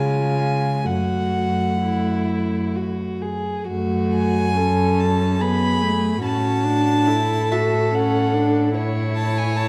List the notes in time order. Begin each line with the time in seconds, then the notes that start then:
Already playing: C#3 G#3 F4 G#5
0.84 F#2 A3 F#4 F#5
1.81 E4
2.76 F#4
3.22 G#4
3.68 F#2 A3 F#4
4.14 G#5
4.57 C#4 A4
5.00 A5
5.39 B3 G#4 B5
5.82 A3
6.21 A2 C#4 F#4
6.25 A5
6.64 D4
7.07 E4 A4
7.52 F#4 E5
7.94 C#4 F#5
8.34 D4
8.75 E4 C#5
9.16 A5
9.38 G#5
9.56 A5